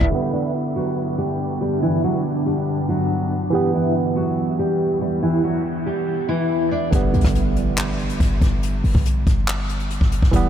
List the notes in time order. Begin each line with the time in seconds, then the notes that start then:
Already playing: E5
0.01 E1, kick
0.10 G2 D3 G3 B3 D4 G4
0.15 B3
0.33 D4 D5
0.76 F#3 F#4
1.18 G3 G4
1.61 G3 G4
1.82 E3 E4
2.03 F#3 F#4
2.46 G3 G4
2.89 F#3 F#4
3.50 E2 E3 G3 G4
3.55 B3
3.74 E3 E4
4.16 F#3 F#4
4.59 G3 G4
5.01 G3 G4
5.22 E3 E4
5.44 F#3 F#4
5.86 G3 G4
6.29 E3 E4
6.71 D4 D5
6.91 G1 D3 G3, kick, closed hi-hat, impact
6.95 B3
7.14 D2, closed hi-hat
7.21 G1, kick, cross-stick, closed hi-hat
7.28 closed hi-hat
7.35 closed hi-hat
7.56 closed hi-hat
7.78 clap, closed hi-hat
7.99 closed hi-hat
8.10 closed hi-hat
8.20 G1, kick, closed hi-hat
8.42 G1, kick, closed hi-hat
8.63 closed hi-hat
8.84 G1, open hi-hat
8.95 B1, kick
9.05 closed hi-hat
9.27 G1, kick, closed hi-hat
9.48 clap, closed hi-hat
9.69 closed hi-hat
9.80 closed hi-hat
9.91 closed hi-hat
10.01 G1, kick
10.12 closed hi-hat
10.22 G1, kick
10.31 E1 E3 G3, kick, closed hi-hat
10.36 B3